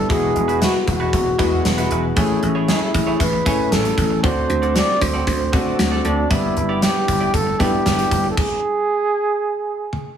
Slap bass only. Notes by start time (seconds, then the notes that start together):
0.10 E1
0.36 E1
0.88 E1
1.13 E1
1.39 E2
1.65 E1
1.91 E1
2.17 A1
2.42 A1
2.94 A1
3.20 A1
3.46 A2
3.72 A1
3.98 A1
4.24 D2
4.49 D2
5.01 D2
5.27 D2
5.53 D3
5.79 D2
6.05 D2
6.31 G1
6.56 G1
7.08 G1
7.34 G1
7.60 G2
7.86 G1
8.11 G1